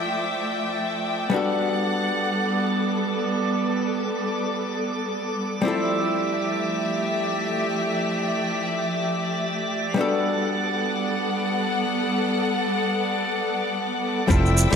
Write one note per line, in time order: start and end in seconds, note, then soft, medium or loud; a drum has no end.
0.00 1.28 F3 medium
0.00 1.28 G3 medium
0.00 1.29 A3 medium
0.00 1.29 C4 medium
0.00 1.30 E4 medium
0.00 1.31 F4 medium
0.00 1.32 A4 medium
0.00 14.31 D5 medium
0.00 1.29 E5 medium
0.00 1.29 G5 medium
0.00 14.31 D6 medium
1.30 5.60 G3 medium
1.30 5.62 G3 medium
1.30 5.62 B3 medium
1.30 5.62 D4 medium
1.30 5.62 A4 medium
1.30 3.47 F#5 medium
1.34 5.63 F#4 medium
1.34 5.64 A4 medium
5.62 9.94 F3 medium
5.62 9.93 G3 medium
5.62 9.94 A3 medium
5.62 9.94 C4 medium
5.62 9.95 E4 medium
5.62 9.94 E5 medium
5.66 9.95 F4 medium
5.66 9.94 G4 medium
5.66 9.96 A4 medium
9.94 14.26 G3 medium
9.94 14.26 B3 medium
9.94 14.27 D4 medium
9.94 14.26 A4 medium
9.94 14.26 F#5 medium
9.99 14.28 F#4 medium
9.99 14.29 A4 medium
14.28 14.65 F1 loud
14.28 14.76 F3 medium
14.28 14.68 G3 medium
14.28 14.68 C4 medium
14.28 14.69 E4 medium
14.28 14.69 F4 medium
14.28 14.76 A4 medium
14.28 14.69 A4 loud
14.28 14.76 E5 medium
14.28 14.76 G5 medium
14.28 14.76 E6 medium
14.28 kick loud
14.28 shaker soft
14.46 shaker soft
14.57 shaker medium
14.71 14.76 C2 loud
14.71 14.76 G3 medium
14.71 14.76 C4 medium
14.71 14.76 E4 medium
14.71 closed hi-hat medium